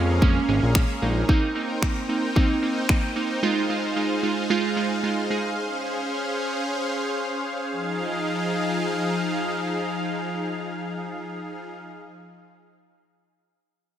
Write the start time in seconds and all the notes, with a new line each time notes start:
Already playing: F2 G#3 A#3 C#4 G#4 A#4 F5
0.22 G#3 A#3 C#4, kick
0.48 G#1 G#3 A#3 C#4
0.63 A#1
0.75 G#3 A#3 C#4, finger snap, kick
1.02 A#1 G#3 A#3 D#4
1.29 A#3 C4 D#4 C5 G5, kick
1.55 A#3 C4 D#4
1.82 A#3 C4 D#4, finger snap, kick
2.09 A#3 C4 D#4
2.36 A#3 C4 D#4, kick
2.62 A#3 C4 D#4
2.89 A#3 C4 D#4, finger snap, kick
3.16 A#3 C4 D#4
3.43 G#3 D#4 F4 G#4 F5
3.70 G#3 D#4 F4
3.96 G#3 D#4 F4
4.23 G#3 D#4 F4
4.50 G#3 D#4 F4
4.77 G#3 D#4 F4
5.03 G#3 D#4 F4
5.30 G#3 D#4 G#4
5.57 C#4 G#4 C5
7.72 F3 D#4 G#4 F5